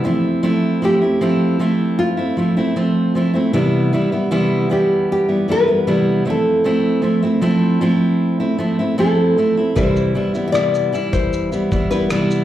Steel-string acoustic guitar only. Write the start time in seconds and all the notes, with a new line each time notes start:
0.04 F3 A3 C4 E4
0.43 F3 A3 C4 E4
0.82 F3 A3 C4 E4
1.01 A3 C4 E4
1.21 F3 A3 C4 E4
1.59 F3 A3 C4 E4
2.17 A3 C4 E4
2.37 F3 A3 C4 E4
2.57 A3 C4 E4
2.76 F3 A3 C4
3.15 F3 A3 C4 E4
3.34 A3 C4 E4
3.53 C3 E3 G3 B3 E4
3.93 E3 G3 B3 E4
4.12 G3 B3 E4
4.31 C3 E3 G3 B3 E4
4.70 E3 G3 B3 E4
5.29 G3 B3 E4
5.48 E3 G3 B3 E4
5.68 G3 B3 E4
5.87 C3 E3 G3 B3 E4
6.25 F3 A3 C4 E4
6.64 F3 A3 C4 E4
7.02 F3 A3 C4 E4
7.23 A3 C4 E4
7.41 F3 A3 C4 E4
7.81 F3 A3 C4 E4
8.40 A3 C4 E4
8.58 F3 A3 C4 E4
8.79 A3 C4 E4
8.98 F3 A3 C4 E4
9.37 F3 A3 C4 E4
9.57 A3 C4 E4
9.75 C3 E3 G3 E4
10.15 E3 G3 B3 E4
10.35 G3 B3 E4
10.52 C3 E3 G3 B3 E4
10.93 E3 G3 E4
11.52 G3 B3 E4
11.71 E3 G3 B3 E4
11.91 G3 B3 E4
12.10 C3 E3 G3 B3 E4